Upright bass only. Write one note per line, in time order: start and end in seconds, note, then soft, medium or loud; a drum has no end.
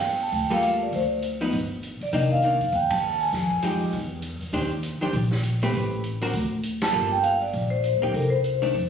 0.00 0.30 G1 medium
0.32 0.90 D2 medium
0.93 1.50 D2 medium
1.53 1.98 G1 medium
2.01 muted upright bass stroke soft
2.13 2.58 C2 medium
2.61 2.72 G2 medium
2.72 3.30 D#2 medium
3.33 3.90 F2 medium
3.93 4.38 E2 medium
4.41 muted upright bass stroke soft
4.53 4.98 D#2 medium
5.01 muted upright bass stroke soft
5.13 5.71 A#1 medium
5.73 6.31 A1 medium
6.33 6.91 D2 medium
6.93 7.51 G1 medium
7.53 7.91 A#1 medium
7.94 8.02 D2 soft
8.03 8.13 A#1 medium
8.14 8.71 C2 medium
8.74 8.89 F2 medium